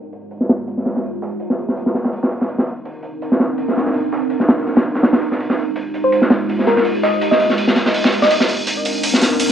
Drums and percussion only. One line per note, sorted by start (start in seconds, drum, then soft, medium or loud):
0.13 closed hi-hat medium
0.13 open hi-hat medium
0.31 closed hi-hat medium
0.31 open hi-hat medium
0.41 snare soft
0.49 snare loud
0.49 closed hi-hat medium
0.49 open hi-hat medium
0.67 closed hi-hat medium
0.67 open hi-hat medium
0.77 snare soft
0.77 closed hi-hat soft
0.86 snare soft
0.86 closed hi-hat medium
0.86 open hi-hat medium
0.96 snare soft
1.03 closed hi-hat medium
1.03 open hi-hat medium
1.14 closed hi-hat soft
1.22 snare soft
1.22 closed hi-hat medium
1.22 open hi-hat medium
1.32 closed hi-hat soft
1.40 closed hi-hat medium
1.40 open hi-hat medium
1.50 snare soft
1.58 closed hi-hat medium
1.58 open hi-hat medium
1.68 snare soft
1.68 closed hi-hat soft
1.76 closed hi-hat medium
1.76 open hi-hat medium
1.86 snare soft
1.94 snare soft
1.94 closed hi-hat medium
1.94 open hi-hat medium
2.04 snare soft
2.13 closed hi-hat medium
2.13 open hi-hat medium
2.23 snare soft
2.31 snare soft
2.31 closed hi-hat medium
2.31 open hi-hat medium
2.41 snare soft
2.49 closed hi-hat medium
2.49 open hi-hat medium
2.58 snare soft
2.67 closed hi-hat medium
2.67 open hi-hat medium
2.85 closed hi-hat medium
2.85 open hi-hat medium
3.03 closed hi-hat medium
3.03 open hi-hat medium
3.22 closed hi-hat medium
3.22 open hi-hat medium
3.32 snare medium
3.40 snare medium
3.40 closed hi-hat medium
3.40 open hi-hat medium
3.58 closed hi-hat medium
3.58 open hi-hat medium
3.68 snare soft
3.68 closed hi-hat soft
3.76 snare soft
3.76 closed hi-hat medium
3.76 open hi-hat medium
3.86 snare soft
3.94 closed hi-hat medium
3.94 open hi-hat medium
4.04 closed hi-hat soft
4.12 snare soft
4.12 closed hi-hat medium
4.12 open hi-hat medium
4.22 closed hi-hat soft
4.30 closed hi-hat medium
4.30 open hi-hat medium
4.40 snare soft
4.49 snare loud
4.49 closed hi-hat medium
4.49 open hi-hat medium
4.58 snare soft
4.58 closed hi-hat soft
4.67 snare soft
4.67 closed hi-hat medium
4.67 open hi-hat medium
4.76 snare medium
4.76 open hi-hat medium
4.84 snare soft
4.84 closed hi-hat medium
4.95 snare soft
4.95 open hi-hat medium
5.03 snare medium
5.03 closed hi-hat medium
5.03 open hi-hat medium
5.13 snare medium
5.13 snare soft
5.13 open hi-hat medium
5.21 snare soft
5.21 closed hi-hat medium
5.21 open hi-hat medium
5.31 snare soft
5.40 closed hi-hat medium
5.40 open hi-hat medium
5.50 snare soft
5.57 closed hi-hat medium
5.57 open hi-hat medium
5.76 closed hi-hat medium
5.76 open hi-hat medium
5.94 closed hi-hat medium
5.94 open hi-hat medium
6.12 closed hi-hat medium
6.12 open hi-hat medium
6.22 snare medium
6.30 snare medium
6.30 closed hi-hat medium
6.30 open hi-hat medium
6.49 closed hi-hat medium
6.49 open hi-hat medium
6.59 snare soft
6.59 closed hi-hat soft
6.67 snare soft
6.67 closed hi-hat medium
6.67 open hi-hat medium
6.77 snare soft
6.85 closed hi-hat medium
6.85 open hi-hat medium
6.95 closed hi-hat soft
7.03 snare soft
7.03 closed hi-hat medium
7.03 open hi-hat medium
7.13 closed hi-hat soft
7.21 closed hi-hat medium
7.21 open hi-hat medium
7.32 snare soft
7.40 closed hi-hat medium
7.40 open hi-hat medium
7.50 snare soft
7.50 closed hi-hat soft
7.58 closed hi-hat medium
7.58 open hi-hat medium
7.68 snare medium
7.76 snare soft
7.76 closed hi-hat medium
7.76 open hi-hat medium
7.86 snare soft
7.94 closed hi-hat medium
7.94 open hi-hat medium
8.04 snare medium
8.12 snare soft
8.12 closed hi-hat medium
8.12 open hi-hat medium
8.22 snare soft
8.31 closed hi-hat medium
8.31 open hi-hat medium
8.40 snare soft
8.49 closed hi-hat medium
8.49 open hi-hat medium
8.67 closed hi-hat medium
8.67 open hi-hat medium
8.85 closed hi-hat medium
8.85 open hi-hat medium
9.03 closed hi-hat medium
9.03 open hi-hat medium
9.14 snare soft
9.21 snare medium
9.21 closed hi-hat medium
9.21 open hi-hat medium
9.40 closed hi-hat medium
9.40 open hi-hat medium